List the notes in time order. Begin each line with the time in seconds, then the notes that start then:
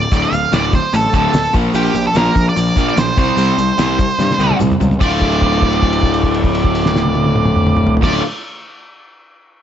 Already playing: D2 A2 D5
0.02 shaker
0.12 D1 D2 A2 D3 D5, kick, open hi-hat, shaker
0.24 F5
0.32 D1 D2 A2, open hi-hat, shaker
0.52 D1 D2 A2 D3 D5, snare, open hi-hat, shaker
0.63 shaker
0.73 D2 A2 C5, kick, open hi-hat, shaker
0.93 A1 D2 A2 A4, open hi-hat, shaker
1.13 D1 D2 A2 D3 A4, kick, open hi-hat, shaker
1.33 D1 D2 A2, snare, open hi-hat, shaker
1.44 shaker
1.53 A#1 A#2 F3 A#3, kick, open hi-hat, shaker
1.64 shaker
1.74 A#1 A#2 F3 A#3 G4, open hi-hat, shaker
1.85 shaker
1.94 A#1 A#2 F3, open hi-hat, shaker
2.07 A4
2.15 A#1 A#2 F3 A#3 A#4, snare, open hi-hat, shaker
2.25 shaker
2.35 A#1 A#2 F3, kick, open hi-hat, shaker
2.49 D5
2.56 A#1 A#2 F3, open hi-hat, shaker
2.76 A#1 A#2 F3 A#3, kick, open hi-hat, shaker
2.87 D5, shaker
2.96 A#1 A#2 F3 C5, snare, open hi-hat, shaker
3.17 C2 C3 G3 C4 C5, kick, open hi-hat, shaker
3.27 shaker
3.37 C2 C3 G3 C4, open hi-hat, shaker
3.48 shaker
3.58 C2 C3 G3, open hi-hat, shaker
3.68 shaker
3.78 C2 C3 G3 C4, snare, open hi-hat, shaker
3.98 C3 G3, kick, open hi-hat, shaker
4.10 shaker
4.19 G2 C3 G3, snare, shaker
4.30 snare, shaker
4.39 C2 C3 G3 C4, high tom, shaker
4.51 high tom
4.60 C2 C3 G3, mid tom, shaker
4.71 mid tom
4.80 C#2 C3 G3, floor tom, shaker
4.91 floor tom, shaker
4.99 D1 D2 A2 D3 A3 D5, kick, crash, shaker
5.03 F4
5.22 kick, crash
5.32 crash
5.42 kick, crash
5.53 crash
5.62 kick, crash
5.73 crash
5.83 kick, crash
5.93 crash
6.03 kick, crash
6.14 crash
6.24 kick, crash
6.34 crash
6.44 kick, crash
6.55 crash
6.64 kick, crash
6.75 crash
6.86 snare
6.96 snare
7.06 high tom
7.15 high tom
7.26 high tom
7.36 mid tom
7.46 mid tom
7.56 mid tom
7.67 mid tom
7.77 mid tom
7.87 floor tom
7.97 floor tom
8.01 D1 D2 A2 D3 A3 F4 D5, kick, snare, crash